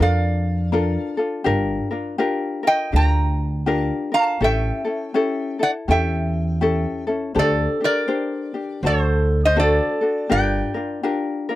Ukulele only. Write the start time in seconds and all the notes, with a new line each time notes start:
0.00 D4 F4 A4 A#4
0.72 D4 F4 A4 A#4
1.17 D4 F4 A4
1.44 D4 F4 G4 A#4
1.91 D4 F4 A#4
2.18 D4 F4 G4 A#4
2.63 F4 A#4
2.92 D4 F4 G4 A#4
3.66 D4 F4 G4 A#4
4.12 D4 F4 A#4
4.40 C#4 E4 G4 A4
4.85 C#4 E4 A4
5.14 C#4 E4 G4 A4
5.59 E4 A4
5.88 C#4 E4 G4 A4
6.61 C#4 E4 G4 A4
7.07 C#4 E4 A4
7.35 D4 G4 A4 C5
7.80 D4 G4
8.08 D4 G4 C5
8.54 D4 G4
8.83 D4 F#4 A4 C5
9.56 D4 F#4 A4 C5
10.01 D4 F#4 A4
10.29 D4 F4 G4 A#4
10.74 D4 F4 A#4
11.03 D4 F4 G4 A#4
11.49 D4 F4 A#4